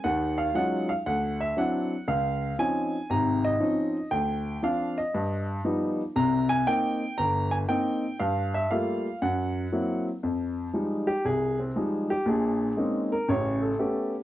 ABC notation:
X:1
M:4/4
L:1/8
Q:"Swing" 1/4=118
K:Fm
V:1 name="Grand piano"
_g f g f ^f =e f2 | f2 a2 b e3 | g2 f e2 z3 | b a g2 b a g2 |
f =e f2 _g3 z | z3 G A C z G | A2 z B ^c =A2 z |]
V:2 name="Grand piano"
[E,,E,]2 [_G,A,DEF] z =D,,2 [^F,C=D=E] z | D,,2 [F,CDE] z [A,,,C,]2 [F,CDE] z | =D,,2 [F,C=D] z G,,2 [F,G,=B,E] z | [C,,C,]2 [B,CE] z G,,,2 [B,CE] z |
G,,2 [G,=A,B,F] z _G,,2 [_G,B,C_F] z | F,,2 [F,G,A,E] z C,,2 [F,G,A,E] z | [B,,,B,,]2 [A,B,CDE] z [=A,,,^C,]2 [=A,=B,^CG] z |]